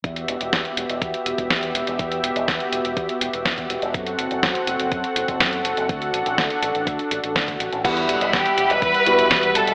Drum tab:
CC |----------------|----------------|----------------|----------------|
HH |xxxxxxxxxxxxxxxx|xxxxxxxxxxxxxxxx|xxxxxxxxxxxxxxxx|xxxxxxxxxxxxxxxx|
SD |----o-------o---|----o-------o---|----o-------o---|----o-------o---|
BD |o---o---o--oo---|o---o---o---oo--|o---o---o--oo---|o---o---o---oo--|

CC |x---------------|
HH |xxxxxxxxxxxxxxxx|
SD |----o-------o---|
BD |o---o---o---o---|